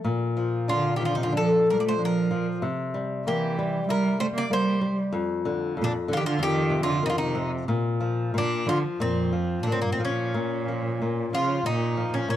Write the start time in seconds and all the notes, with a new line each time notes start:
0.04 A#2
0.37 F3
0.68 D4 F4
0.72 D3
0.96 D#3 G4
1.00 F3
1.05 D3 F4
1.15 C3 D#4
1.23 D3 F4
1.32 F3 D4
1.37 A4
1.67 F3 A#4
1.72 G3
1.79 A#3 D5
1.84 A3
1.89 C5
1.99 F3 D4
2.05 A#4
2.31 F3
2.62 C3
2.94 G3
3.26 E3 A#3 G4
3.59 G3
3.88 G3 E4 A#4
4.20 G3 A3 C5
4.34 A#3 D5
4.51 G3 A#3 C5
4.81 G3
5.12 F2
5.45 D3
5.77 F2
5.82 A#2 D4
6.08 D3
6.13 F4 G4
6.18 D#3
6.26 D3 F4
6.39 F2 D#3 G4
6.70 C3
6.83 D3 F4
7.03 C3 D#3 D#4
7.10 D3 F4
7.18 C3 D#4
7.35 C3
7.68 A#2
8.00 F3
8.34 A#2 D4
8.67 D3 F3 F4
9.00 F2 A#2 C4
9.33 F3
9.63 A#2 D4
9.67 A#2
9.72 A2 C4
9.82 G2 A#3
9.92 A2 C4
10.00 F3
10.05 A#2 C#4
10.34 A#2
10.68 F3
11.02 A#2
11.33 C#3 F3 F4
11.64 A#2 D#4
11.97 F3
12.12 A#2 C#4
12.28 A#2 C#4